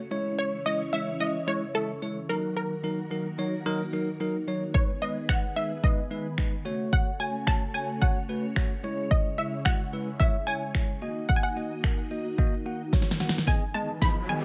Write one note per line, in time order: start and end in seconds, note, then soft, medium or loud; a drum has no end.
0.00 2.25 C#3 medium
0.11 2.27 E3 medium
0.11 0.55 G#3 medium
0.11 0.55 E4 medium
0.11 2.27 E4 medium
0.11 2.27 C#5 loud
0.11 0.56 C#5 loud
0.39 0.64 C#5 loud
0.66 0.81 G#3 medium
0.66 0.81 E4 medium
0.66 0.81 C#5 medium
0.66 0.91 D#5 loud
0.93 1.08 G#3 medium
0.93 1.08 E4 medium
0.93 1.08 C#5 medium
0.93 1.21 E5 loud
1.20 1.35 G#3 medium
1.20 1.35 E4 medium
1.20 1.48 D#5 medium
1.20 1.36 E5 medium
1.47 1.63 G#3 medium
1.47 1.63 E4 medium
1.47 1.76 C#5 loud
1.47 1.63 C#5 loud
1.75 1.90 G#3 medium
1.75 1.90 E4 medium
1.75 2.31 A4 loud
1.75 1.90 E5 medium
2.02 2.17 G#3 medium
2.02 2.17 E4 medium
2.02 2.17 C#5 medium
2.29 6.62 D#3 medium
2.29 2.74 F#3 medium
2.29 4.72 A#3 medium
2.29 2.74 D#4 medium
2.29 4.72 F#4 medium
2.29 2.55 A#4 medium
2.29 4.72 A#4 medium
2.29 2.74 A#4 medium
2.57 3.62 A#4 medium
2.84 2.99 F#3 medium
2.84 2.99 D#4 medium
2.84 2.99 A#4 medium
3.11 3.26 F#3 medium
3.11 3.26 D#4 medium
3.11 3.26 A#4 medium
3.38 3.54 F#3 medium
3.38 3.54 D#4 medium
3.38 3.54 C#5 medium
3.66 3.81 F#3 loud
3.66 3.81 D#4 loud
3.66 3.81 A#4 loud
3.93 4.08 F#3 medium
3.93 4.08 D#4 medium
3.93 4.08 A#4 medium
4.20 4.35 F#3 medium
4.20 4.35 D#4 medium
4.20 4.36 A#4 medium
4.47 4.63 F#3 medium
4.47 4.63 D#4 medium
4.47 4.63 C#5 medium
4.74 4.90 G#3 medium
4.74 6.64 B3 medium
4.74 4.90 D#4 medium
4.74 6.64 G#4 medium
4.74 6.64 B4 medium
4.74 4.90 B4 loud
4.74 5.00 C#5 medium
4.74 kick loud
5.02 5.17 G#3 medium
5.02 5.17 D#4 medium
5.02 5.17 B4 medium
5.02 5.14 D#5 medium
5.29 5.44 G#3 medium
5.29 5.44 D#4 medium
5.29 5.45 B4 medium
5.29 5.57 F#5 loud
5.29 finger snap loud
5.29 kick loud
5.56 5.71 G#3 medium
5.56 5.72 D#4 medium
5.56 5.72 B4 medium
5.56 5.82 E5 medium
5.83 5.99 G#3 medium
5.83 5.99 D#4 medium
5.83 5.99 B4 loud
5.83 5.96 D#5 medium
5.83 kick loud
6.11 6.26 G#3 medium
6.11 6.26 D#4 medium
6.11 6.26 B4 medium
6.38 6.53 G#3 medium
6.38 6.53 D#4 medium
6.38 6.53 B4 medium
6.38 finger snap loud
6.38 kick loud
6.65 10.98 C#3 medium
6.65 7.10 A3 medium
6.65 8.81 A3 medium
6.65 7.10 F#4 medium
6.65 8.82 F#4 medium
6.65 10.98 C#5 medium
6.65 7.10 C#5 loud
6.93 7.18 F#5 loud
6.93 kick loud
7.20 7.35 A3 medium
7.20 7.35 F#4 medium
7.20 7.35 C#5 medium
7.20 7.48 G#5 loud
7.47 7.62 A3 medium
7.47 7.62 F#4 medium
7.47 7.63 C#5 medium
7.47 7.75 A5 loud
7.47 finger snap loud
7.47 kick loud
7.74 7.90 A3 medium
7.74 7.90 F#4 medium
7.74 7.90 C#5 medium
7.74 8.00 G#5 medium
8.02 8.17 A3 medium
8.02 8.17 F#4 medium
8.02 8.17 C#5 loud
8.02 8.27 F#5 medium
8.02 kick loud
8.29 8.44 A3 medium
8.29 8.44 F#4 medium
8.29 8.44 B4 medium
8.56 8.72 A3 medium
8.56 8.72 F#4 medium
8.56 8.72 C#5 medium
8.56 finger snap loud
8.56 kick loud
8.84 11.00 G#3 medium
8.84 9.28 G#3 medium
8.84 11.00 E4 medium
8.84 9.28 E4 medium
8.84 9.28 C#5 loud
9.11 9.39 D#5 medium
9.11 kick loud
9.38 9.53 G#3 medium
9.38 9.54 E4 medium
9.38 9.50 E5 medium
9.38 9.54 E5 medium
9.65 9.81 G#3 medium
9.65 9.81 E4 medium
9.65 9.81 F#4 medium
9.65 10.22 F#5 loud
9.65 finger snap loud
9.65 kick medium
9.93 10.08 G#3 medium
9.93 10.08 E4 medium
9.93 10.08 B4 medium
10.20 10.35 G#3 medium
10.20 10.35 E4 medium
10.20 10.36 C#5 loud
10.20 10.48 E5 loud
10.20 kick loud
10.47 10.63 G#3 medium
10.47 10.63 E4 medium
10.47 10.63 C#5 medium
10.47 11.31 G#5 loud
10.75 10.90 G#3 medium
10.75 10.90 E4 medium
10.75 10.90 C#5 medium
10.75 finger snap loud
10.75 kick loud
11.02 13.45 D#3 medium
11.02 11.46 A#3 medium
11.02 13.45 A#3 medium
11.02 13.45 F#4 medium
11.02 11.46 F#4 medium
11.02 13.45 D#5 medium
11.02 11.46 D#5 medium
11.29 11.36 F#5 medium
11.29 kick loud
11.36 11.44 G#5 medium
11.43 12.88 F#5 medium
11.56 11.72 A#3 medium
11.56 11.72 F#4 medium
11.56 11.72 D#5 medium
11.84 11.99 A#3 medium
11.84 11.99 F#4 medium
11.84 11.99 A#4 medium
11.84 finger snap loud
11.84 kick loud
12.11 12.26 A#3 medium
12.11 12.26 F#4 medium
12.11 12.26 D#5 medium
12.38 12.53 A#3 loud
12.38 12.54 F#4 loud
12.38 12.54 D#5 loud
12.38 kick loud
12.66 12.81 A#3 medium
12.66 12.81 F#4 medium
12.66 12.81 F#5 medium
12.93 13.08 A#3 medium
12.93 13.08 F#4 medium
12.93 13.08 C#5 medium
12.93 kick loud
12.93 snare medium
13.02 snare medium
13.11 snare medium
13.20 13.35 A#3 medium
13.20 13.35 F#4 medium
13.20 13.36 F#5 medium
13.20 snare medium
13.29 snare medium
13.38 snare medium
13.47 13.57 G#2 medium
13.47 14.45 D#3 medium
13.47 13.62 B3 medium
13.47 14.45 B3 medium
13.47 13.62 G#4 medium
13.47 14.45 G#4 medium
13.47 14.45 D#5 medium
13.47 13.63 D#5 loud
13.47 13.60 G#5 loud
13.47 kick loud
13.47 snare medium
13.47 riser medium
13.74 13.84 G#3 medium
13.74 13.90 B3 medium
13.74 13.90 G#4 medium
13.74 13.90 D#5 medium
13.74 14.03 A5 medium
14.02 14.17 B3 medium
14.02 14.12 D#4 medium
14.02 14.17 G#4 medium
14.02 14.17 D#5 medium
14.02 14.30 B5 loud
14.02 kick medium
14.02 snare medium
14.29 14.39 D#3 medium
14.29 14.44 B3 medium
14.29 14.45 G#4 medium
14.29 14.45 D#5 medium
14.29 14.45 G#5 medium